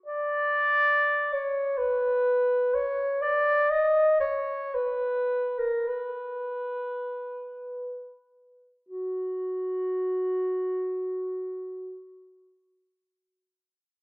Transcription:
0.06 1.35 D5 medium
1.33 1.79 C#5 medium
1.78 2.76 B4 medium
2.74 3.23 C#5 medium
3.22 3.72 D5 medium
3.70 4.20 D#5 medium
4.20 4.76 C#5 medium
4.74 5.60 B4 medium
5.58 5.89 A#4 soft
5.88 8.04 B4 soft
8.89 12.00 F#4 soft

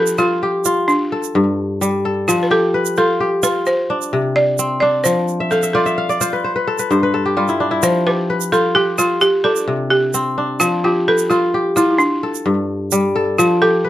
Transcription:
0.00 0.93 F3 medium
0.00 0.94 D4 medium
0.00 0.42 G4 medium
0.00 0.19 A4 medium
0.00 1.19 B4 medium
0.07 shaker medium
0.18 0.90 F4 medium
0.18 0.65 F4 medium
0.18 shaker soft
0.43 1.84 G4 medium
0.65 2.17 F4 medium
0.65 shaker medium
0.88 2.00 D4 medium
0.88 shaker soft
1.12 2.05 A4 medium
1.23 shaker soft
1.35 2.32 G2 medium
1.81 2.32 G3 medium
1.81 shaker medium
2.05 3.37 A4 medium
2.28 3.71 F3 medium
2.28 2.44 F4 medium
2.28 shaker medium
2.43 2.50 B4 medium
2.51 3.20 G4 medium
2.51 2.94 A4 medium
2.74 3.97 B4 medium
2.85 shaker medium
2.96 3.43 F4 medium
2.96 3.45 A4 medium
2.96 shaker soft
3.20 4.62 G4 medium
3.43 4.94 F4 medium
3.43 3.65 B4 medium
3.43 shaker medium
3.66 4.38 C5 medium
3.66 shaker soft
3.90 4.82 D4 medium
4.02 shaker soft
4.13 5.10 C3 medium
4.36 4.79 D5 medium
4.59 6.39 C4 medium
4.59 shaker medium
4.80 6.50 D4 medium
4.80 5.05 D5 medium
5.04 6.49 F3 medium
5.04 5.48 C5 medium
5.04 shaker medium
5.28 shaker soft
5.40 5.62 E5 medium
5.51 5.72 A4 medium
5.51 5.92 F5 medium
5.51 shaker soft
5.63 5.85 E5 medium
5.63 shaker medium
5.73 6.20 F4 medium
5.73 6.63 A4 medium
5.73 6.09 D5 medium
5.86 6.27 E5 medium
5.86 shaker soft
5.98 6.98 F5 medium
6.09 7.20 D5 medium
6.09 shaker soft
6.21 7.37 F4 medium
6.21 6.44 C5 medium
6.21 shaker medium
6.33 6.55 B4 medium
6.44 6.85 C5 medium
6.56 6.79 B4 medium
6.67 7.13 A4 medium
6.79 7.03 B4 medium
6.79 shaker soft
6.91 7.88 G2 medium
6.91 8.10 C5 medium
6.91 shaker soft
7.03 8.26 B4 medium
7.14 8.46 A4 medium
7.26 8.06 G4 medium
7.37 7.88 G3 medium
7.37 7.77 F4 medium
7.48 7.71 E4 medium
7.48 shaker soft
7.60 9.28 D4 medium
7.71 8.58 E4 medium
7.83 9.27 F3 medium
7.83 8.05 C5 loud
7.83 shaker medium
8.07 8.75 G4 medium
8.07 8.49 B4 medium
8.30 9.53 B4 medium
8.41 shaker medium
8.52 8.98 F4 medium
8.52 8.74 A4 medium
8.52 shaker soft
8.75 8.99 G4 loud
8.75 10.17 G4 medium
8.98 9.22 F4 medium
8.98 10.50 F4 medium
8.98 shaker medium
9.21 9.32 G4 loud
9.21 shaker soft
9.44 10.37 D4 medium
9.44 9.87 A4 medium
9.56 shaker soft
9.68 10.65 C3 medium
9.90 10.62 G4 medium
10.14 11.14 C4 medium
10.14 shaker medium
10.38 12.06 D4 medium
10.60 12.04 F3 medium
10.60 10.83 F4 medium
10.60 shaker medium
10.84 11.05 F4 medium
10.84 11.54 G4 medium
11.08 11.29 A4 medium
11.08 12.31 B4 medium
11.18 shaker soft
11.30 11.77 F4 medium
11.30 11.76 F4 medium
11.30 shaker soft
11.54 12.95 G4 medium
11.76 11.89 E4 medium
11.76 13.28 F4 medium
11.76 shaker medium
11.91 11.98 E4 medium
11.98 13.10 D4 medium
11.98 shaker soft
12.23 13.15 A4 medium
12.35 shaker soft
12.46 13.42 G2 medium
12.92 13.42 G3 medium
12.92 shaker medium
13.16 13.89 A4 medium
13.38 13.89 F3 medium
13.38 13.62 F4 medium
13.38 shaker medium
13.62 13.89 G4 medium
13.62 13.89 A4 medium
13.85 13.89 B4 medium

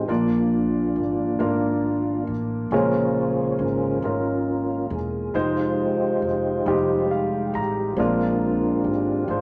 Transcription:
0.00 0.11 G#3 soft
0.00 0.10 D#4 soft
0.00 0.09 F4 soft
0.00 0.11 D#5 soft
0.07 0.92 A#1 medium
0.07 1.36 A#2 soft
0.07 1.35 F3 soft
0.07 2.23 A#3 soft
0.07 0.99 A#3 medium
0.07 2.24 D4 soft
0.07 1.00 D4 medium
0.07 1.00 F4 medium
0.07 2.24 F4 medium
0.07 1.00 D5 medium
0.96 1.36 G#1 medium
1.39 2.23 G#1 medium
1.39 2.30 A#3 medium
1.39 2.30 D4 soft
1.39 2.31 F4 soft
1.39 2.31 A#4 medium
2.27 2.68 A1 medium
2.71 3.55 A#1 medium
2.71 3.99 A#2 soft
2.71 3.99 C#3 soft
2.71 3.63 G#3 medium
2.71 3.99 G#3 soft
2.71 3.63 C#4 medium
2.71 3.59 F4 medium
2.71 3.63 F4 medium
2.71 3.99 G#4 medium
2.71 3.64 A#4 medium
2.71 3.99 C5 soft
2.71 3.62 C#5 medium
3.59 3.99 G#1 medium
3.59 4.87 C#4 soft
3.59 4.87 F4 soft
3.59 4.95 A#4 medium
4.02 4.86 G#1 medium
4.02 4.94 G#3 soft
4.02 4.94 C#4 soft
4.02 4.95 F4 soft
4.02 4.95 A#4 soft
4.90 5.31 E1 medium
4.90 5.36 G#4 medium
5.34 6.18 F1 medium
5.34 6.25 G#3 medium
5.34 7.94 G#3 soft
5.34 6.26 D#4 soft
5.34 7.06 D#4 soft
5.34 6.26 F4 medium
5.34 7.06 F4 medium
5.34 7.93 G4 soft
5.34 7.06 C5 medium
5.34 6.26 C5 medium
6.22 6.62 F1 medium
6.65 7.49 F1 medium
6.65 6.72 G3 soft
6.65 7.57 D#4 medium
6.65 7.58 F4 medium
6.65 7.58 G4 medium
6.72 7.60 G#3 medium
7.11 7.51 F5 medium
7.54 7.94 A1 medium
7.54 7.95 A#5 medium
7.97 8.80 A#1 medium
7.97 9.25 A#2 soft
7.97 9.24 G#3 soft
7.97 8.89 G#3 medium
7.97 9.24 C4 soft
7.97 9.25 D4 medium
7.97 8.89 D4 medium
7.97 9.25 F4 medium
7.97 8.89 F4 medium
7.97 8.88 A#4 medium
7.97 8.90 A#4 medium
8.84 9.25 G#1 medium
8.84 9.29 G4 medium
9.28 9.41 G#1 medium
9.28 9.41 G#3 soft
9.28 9.41 D4 soft
9.28 9.41 F4 medium
9.28 9.41 F4 soft
9.28 9.41 C5 medium

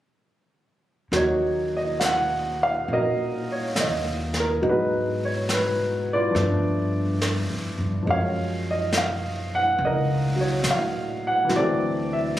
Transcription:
1.12 2.83 D#2 medium
1.12 4.61 F#3 soft
1.12 4.61 A#3 soft
1.12 2.87 C#4 soft
1.12 brush sweep soft
1.12 snare soft
1.16 2.86 D#4 medium
1.16 2.86 F#4 medium
1.16 1.70 C#5 medium
1.77 1.99 D#5 medium
2.00 2.02 F5 medium
2.00 snare soft
2.00 hi-hat pedal soft
2.04 2.63 F#5 medium
2.63 2.90 F5 medium
2.88 3.71 A#2 medium
2.88 4.61 C#4 soft
2.88 4.62 D#4 soft
2.88 4.63 F#4 soft
2.88 brush sweep soft
2.93 4.38 A#4 medium
2.93 3.44 D#5 medium
3.52 3.78 C#5 medium
3.75 4.58 D#2 medium
3.75 snare soft
3.75 hi-hat pedal soft
3.80 4.32 D#5 medium
4.34 snare soft
4.40 4.63 A#4 medium
4.62 6.31 G#2 medium
4.62 6.34 F#3 soft
4.62 6.34 G#3 soft
4.62 6.35 B3 soft
4.62 4.68 D#4 medium
4.62 brush sweep soft
4.69 6.34 D#4 medium
4.69 6.34 F#4 medium
4.69 5.20 B4 medium
5.25 5.49 C#5 medium
5.49 snare soft
5.49 hi-hat pedal soft
5.53 6.05 B4 medium
6.13 7.78 F4 medium
6.13 7.77 B4 medium
6.13 7.78 D5 medium
6.31 8.01 F3 medium
6.31 8.06 A3 soft
6.35 7.45 G2 medium
6.35 8.08 B3 medium
6.35 brush sweep soft
6.35 snare soft
6.41 8.09 D4 medium
7.22 snare soft
7.22 hi-hat pedal soft
7.50 7.76 A2 soft
7.79 8.04 G2 medium
8.03 11.47 F3 soft
8.03 11.49 G#3 soft
8.07 9.74 F#2 medium
8.07 9.85 A#4 soft
8.07 8.68 F5 medium
8.07 brush sweep soft
8.13 11.53 C#4 soft
8.13 9.77 C#5 medium
8.71 8.93 D#5 medium
8.93 snare soft
8.93 hi-hat pedal soft
8.98 9.48 F5 medium
9.55 9.81 F#5 loud
9.78 10.60 C#2 medium
9.78 brush sweep soft
9.85 11.50 A#4 medium
9.85 10.35 D#5 medium
10.36 11.48 F#3 soft
10.41 10.67 C#5 medium
10.63 11.45 A2 medium
10.63 snare soft
10.63 hi-hat pedal soft
10.71 11.26 F5 medium
11.27 11.50 F#5 medium
11.45 12.39 E3 medium
11.49 12.39 D2 medium
11.49 12.39 F#3 soft
11.49 12.39 A3 soft
11.49 brush sweep soft
11.49 snare soft
11.56 12.39 C4 medium
11.56 12.39 F#4 medium
11.56 12.39 A4 medium
11.56 12.13 D5 medium
12.13 12.37 E5 medium

